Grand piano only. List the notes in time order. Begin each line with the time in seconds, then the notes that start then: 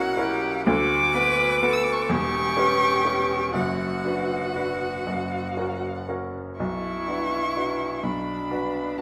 Already playing: B1 B2 C#4 E4 A#4
0.17 C#4 E4 A#4
0.67 D2 D3
1.15 B3 F#4 B4
1.63 B3 F#4 B4
2.09 E1 E2
2.57 C#4 G4 B4
3.05 C#4 G4 B4
3.54 F#1 F#2
4.05 D4 F#4 B4
4.56 D4 F#4 B4
5.07 F#1 F#2
5.57 C#4 F#4 A#4
6.09 C#4 F#4 A#4
6.60 B1 B2
7.08 D4 F#4 B4
7.57 D4 F#4 B4
8.03 B1 B2
8.51 D4 F#4 B4
8.98 D4 F#4